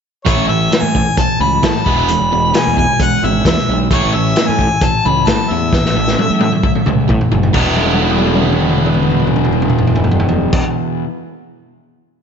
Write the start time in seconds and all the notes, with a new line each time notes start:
0.25 A1 A2 E3 A3 C#5, kick, closed hi-hat
0.37 A1
0.48 A1 A2 E3 E5
0.71 A2 E3, snare, closed hi-hat
0.81 A2 G#5
0.95 A2 E3, kick
1.17 A2 E3 A5, kick, closed hi-hat
1.40 C#2 A2 E3 B5
1.63 A2 E3 A5, kick, snare, closed hi-hat
1.76 snare
1.86 E1 E2 B2 E3 G#3 B3 B5, kick
2.09 E2 B2 E3 G#3, closed hi-hat
2.21 E1
2.32 E1 E2 B2 E3 G#3
2.54 E2 B2 E3 G#3 G#5, snare, closed hi-hat
2.68 E2
2.77 E2 B2 E3 G#3 G#5, kick
3.00 E2 B2 E3 G#3 F#5, kick, closed hi-hat
3.23 G#1 E2 B2 E3 G#3 E5
3.45 E2 B2 E3 G#3 E5, kick, snare, closed hi-hat
3.58 snare
3.69 B1 E2 B2 E3 G#3
3.91 A1 A2 E3 A3 C#5, kick, closed hi-hat
4.04 A1
4.14 A1 A2 E3 E5
4.36 A2 E3, snare, closed hi-hat
4.47 A2 G#5
4.59 A2 E3, kick
4.81 A2 E3 A5, kick, closed hi-hat
5.05 C#2 A2 E3 B5
5.27 A2 E3 A5, kick, snare, closed hi-hat
5.50 E2 A2 E3 E5
5.73 A2 E3, kick, snare
5.85 A1, snare
5.96 A1 A2 E3
6.08 snare
6.19 A2 E3, high tom
6.30 A2
6.41 A2 E3, high tom
6.52 mid tom
6.63 A2 E3, kick
6.75 mid tom
6.86 C#2 A2 E3, mid tom
7.08 A2 E3, kick, mid tom
7.21 floor tom
7.32 F#1 A2 E3, floor tom
7.43 floor tom
7.53 E1 E2 B2 E3 G#3 B3 E4, kick, crash
7.58 E3
7.76 high tom
7.86 high tom
7.94 high tom
8.02 high tom
8.11 high tom
8.19 high tom
8.27 high tom
8.35 high tom
8.43 mid tom
8.53 mid tom
8.60 mid tom
8.69 mid tom
8.78 mid tom
8.86 mid tom
8.94 mid tom
9.03 mid tom
9.11 mid tom
9.20 mid tom
9.27 mid tom
9.36 mid tom
9.45 mid tom
9.53 mid tom
9.62 mid tom
9.70 mid tom
9.79 floor tom
9.87 floor tom
9.96 floor tom
10.04 floor tom
10.11 floor tom
10.20 floor tom
10.29 floor tom
10.53 kick, crash